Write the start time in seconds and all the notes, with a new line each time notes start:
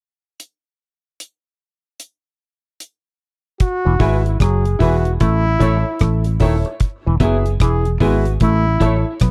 0.40 closed hi-hat
1.20 closed hi-hat
2.00 closed hi-hat
2.80 closed hi-hat
3.60 F#4, kick, closed hi-hat
3.85 E1 E3
3.99 G#1 G#3 E4 G#4 B4 E5, kick, open hi-hat
4.26 E4, closed hi-hat
4.40 F#1 F#3 G#4, kick, cross-stick, closed hi-hat
4.65 closed hi-hat
4.79 E1 E3 E4 F#4 G#4 B4 E5, kick, open hi-hat
5.05 closed hi-hat
5.20 A1 A3 E4, kick, closed hi-hat
5.59 A1 A3 E4 A4 C#5 E5, kick, closed hi-hat
5.99 A1 A3, kick, cross-stick, closed hi-hat
6.24 closed hi-hat
6.40 D#1 D#3 E4 A4 C#5 E5, kick, open hi-hat
6.65 C#5 E5, muted clean electric guitar stroke, closed hi-hat
6.80 kick, closed hi-hat
7.06 E1 E3
7.20 F#1 F#3 B3 E4 G#4 B4 E5, kick, closed hi-hat
7.46 closed hi-hat
7.60 E1 E3 G#4, kick, cross-stick, closed hi-hat
7.85 closed hi-hat
8.00 G#1 G#3 B3 E4 F#4 G#4 B4 E5, kick, open hi-hat
8.25 closed hi-hat
8.40 A1 A3 E4, kick, closed hi-hat
8.80 A1 A3 E4 A4 C#5 E5, kick, closed hi-hat
9.20 B1 B3, kick, cross-stick, closed hi-hat